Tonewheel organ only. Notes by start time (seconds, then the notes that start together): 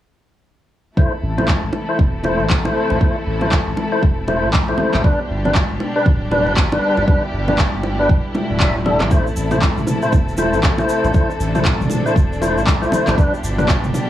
0.97 A3 E4 C5
1.38 A3 E4 C5
1.89 A3 E4 C5
2.25 A3 E4 C5
2.65 A3 E4 C5
3.01 A3 E4 C5
3.42 A3 E4 C5
3.92 A3 E4 C5
4.28 A3 E4 C5
4.69 A3 E4 C5
5.04 G3 D4 B4
5.45 G3 D4 B4
5.96 G3 D4 B4
6.31 G3 D4 B4
6.72 G3 D4 B4
7.08 G3 D4 B4
7.48 G3 D4 B4
7.99 G3 D4 B4
8.60 G3 D4 E5
8.86 G3 D4 A4
9.11 A3 E4 C5
9.52 A3 E4 C5
10.03 A3 E4 C5
10.38 A3 E4 C5
10.79 A3 E4 C5
11.14 A3 E4 C5
11.55 A3 E4 C5
12.06 A3 E4 C5
12.41 A3 E4 C5
12.82 A3 E4 C5
13.18 G3 D4 B4
13.58 G3 D4 B4